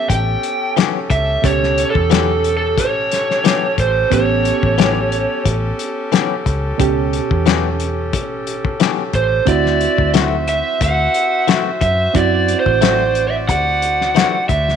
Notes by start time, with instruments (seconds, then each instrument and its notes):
Already playing: reed electric piano B3 C#4 G4, horn section C#4 G4 A4
0.09 fingered electric bass A1, lead electric guitar G5, kick, closed hi-hat
0.43 closed hi-hat
0.77 clean electric guitar E3 B3 C#4 G4, snare, closed hi-hat
1.10 fingered electric bass C#2, lead electric guitar E5, kick, closed hi-hat
1.42 fingered electric bass C#2, reed electric piano B2 C#4 G4, lead electric guitar C#5, kick, closed hi-hat
1.63 snare
1.78 closed hi-hat
1.90 lead electric guitar A4
1.95 fingered electric bass E2, kick
2.10 clean electric guitar E3 B3 C#4 G4, snare, closed hi-hat
2.44 closed hi-hat
2.57 lead electric guitar A4
2.78 fingered electric bass A1, lead electric guitar C#5, kick, closed hi-hat
3.12 snare, closed hi-hat
3.31 snare
3.44 clean electric guitar E3 B3 C#4 G4, snare, closed hi-hat
3.78 fingered electric bass A1, lead electric guitar C5, kick, closed hi-hat
4.10 fingered electric bass A1, reed electric piano B3 C#4 G4, lead electric guitar C#5, kick, closed hi-hat
4.45 closed hi-hat
4.63 fingered electric bass A1, kick
4.78 clean electric guitar E3 B3 C#4 G4, snare, closed hi-hat
5.12 closed hi-hat
5.46 fingered electric bass A1, kick, closed hi-hat
5.79 closed hi-hat
6.12 clean electric guitar E3 B3 C#4 G4, snare, closed hi-hat
6.46 fingered electric bass C#2, kick, closed hi-hat
6.78 fingered electric bass C#2, reed electric piano B2 C#4 G4, kick, closed hi-hat
7.13 closed hi-hat
7.31 fingered electric bass E2, kick
7.46 clean electric guitar E3 B3 C#4 G4, snare, closed hi-hat
7.80 closed hi-hat
8.13 fingered electric bass A1, kick, closed hi-hat
8.47 closed hi-hat
8.65 kick
8.80 clean electric guitar E3 B3 C#4 G4, snare, closed hi-hat
9.13 fingered electric bass A1, lead electric guitar C5, kick, closed hi-hat
9.45 fingered electric bass D2, reed electric piano C4 E4 F#4, horn section F#4 C5 E5, lead electric guitar D5, kick, closed hi-hat
9.66 snare
9.81 closed hi-hat
9.98 fingered electric bass D2, kick
10.14 clean electric guitar E3 A3 C4 F#4, snare, closed hi-hat
10.48 lead electric guitar E5, closed hi-hat
10.81 fingered electric bass D2, lead electric guitar F#5, kick, closed hi-hat
11.14 closed hi-hat
11.47 clean electric guitar E3 A3 C4 F#4, snare, closed hi-hat
11.81 fingered electric bass F#2, lead electric guitar E5, kick, closed hi-hat
12.14 fingered electric bass F#2, reed electric piano C4 E4 F#4, horn section D5, lead electric guitar D5, kick, closed hi-hat
12.48 closed hi-hat
12.60 lead electric guitar C5
12.66 fingered electric bass A1, kick
12.81 clean electric guitar E3 A3 C4 F#4, snare, closed hi-hat
13.15 closed hi-hat
13.27 lead electric guitar E5
13.49 fingered electric bass D2, lead electric guitar F#5, kick, closed hi-hat
13.82 closed hi-hat
14.01 snare
14.15 clean electric guitar E3 A3 C4 F#4, snare, closed hi-hat
14.49 fingered electric bass D2, lead electric guitar E5, kick, closed hi-hat
14.69 snare